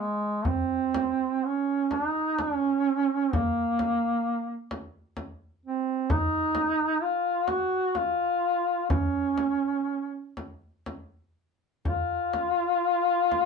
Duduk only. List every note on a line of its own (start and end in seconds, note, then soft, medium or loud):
0.00 0.49 G#3 medium
0.47 1.46 C4 medium
1.45 1.95 C#4 medium
1.93 2.43 D#4 medium
2.41 3.35 C#4 medium
3.33 4.71 A#3 medium
5.66 6.12 C4 medium
6.10 7.03 D#4 medium
7.02 7.50 F4 medium
7.48 7.98 F#4 medium
7.97 8.89 F4 medium
8.90 10.34 C#4 medium
11.88 13.45 F4 loud